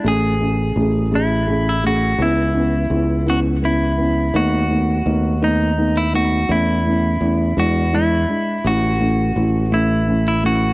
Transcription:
<<
  \new Staff \with { instrumentName = "Clean electric guitar" } { \time 6/8 \key a \major \tempo 4. = 56 gis'4. e'8. e'16 fis'8 | e'4. fis'8 e'4 | fis'4. dis'8. e'16 fis'8 | e'4. fis'8 e'4 |
fis'4. e'8. e'16 fis'8 | }
  \new Staff \with { instrumentName = "Felt piano" } { \time 6/8 \key a \major <a cis' gis'>8 <a cis' gis'>8 <a cis' gis'>8 <a cis' gis'>8 <a cis' gis'>8 <a cis' gis'>8 | <b cis' e'>8 <b cis' e'>8 <b cis' e'>8 <b cis' e'>8 <b cis' e'>8 <b cis' e'>8 | <a b dis'>8 <a b dis'>8 <a b dis'>8 <a b dis'>8 <a b dis'>8 <a b dis'>8 | <a cis' e'>8 <a cis' e'>8 <a cis' e'>8 <gis d' e'>8 <gis d' e'>8 <gis d' e'>8 |
<a cis' e'>8 <a cis' e'>8 <a cis' e'>8 <a cis' e'>8 <a cis' e'>8 <a cis' e'>8 | }
  \new Staff \with { instrumentName = "Fingered electric bass" } { \clef bass \time 6/8 \key a \major a,,4 a,,2 | cis,4 cis,2 | dis,4 dis,2 | e,4 e,8 e,4 r8 |
a,,4 a,,2 | }
>>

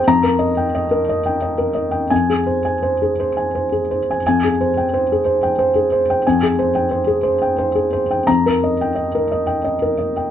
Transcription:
<<
  \new Staff \with { instrumentName = "Felt piano" } { \time 3/4 \key f \minor \tempo 4 = 88 << { bes''8 r2 r8 | aes''8 r2 r8 | aes''8 r2 r8 | r2. |
bes''8 r2 r8 | } \\ { r16 bes'16 ees''16 g''16 ees''16 bes'16 ees''16 g''16 ees''16 bes'16 ees''16 g''16 | r16 aes'16 c''16 aes''16 c''16 aes'16 c''16 aes''16 c''16 aes'16 c''16 aes''16 | r16 aes'16 c''16 g''16 c''16 aes'16 c''16 g''16 c''16 aes'16 c''16 g''16 | aes''16 aes'16 c''16 g''16 c''16 aes'16 c''16 g''16 c''16 aes'16 c''16 g''16 |
r16 bes'16 ees''16 g''16 ees''16 bes'16 ees''16 g''16 ees''16 bes'16 ees''16 g''16 | } >> }
  \new Staff \with { instrumentName = "Felt piano" } { \clef bass \time 3/4 \key f \minor f,2. | f,2. | f,2. | f,2. |
f,2. | }
>>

